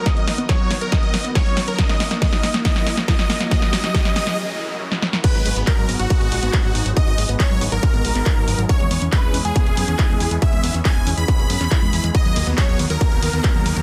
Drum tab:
CC |----------------|----------------|----------------|x---------------|
RD |----------------|----------------|----------------|----------------|
HH |xxoxx-oxxxoxxxox|xxoxx-oxxxoxx-ox|xxoxxxox--------|xxoxx-oxxxoxx-ox|
CP |----------------|----------------|----------------|----x-------x---|
SD |o-o-o-o-o-o-o-o-|oooooooooooooooo|oooooooo-----ooo|----------------|
BD |o---o---o---o---|o---o---o---o---|o---o-----------|o---o---o---o---|

CC |----------------|----------------|----------------|----------------|
RD |----------------|----------------|----------------|--x---x---x---x-|
HH |xxoxx-oxxxoxx-ox|xxoxx-oxxxoxx-ox|xxoxx-oxxxoxx-ox|xxoxx-oxxxoxx-ox|
CP |----x------xx---|----x-------x---|----x------xx---|----x-------x---|
SD |----------------|----------------|----------------|----------------|
BD |o---o---o---o---|o---o---o---o---|o---o---o---o---|o---o---o---o---|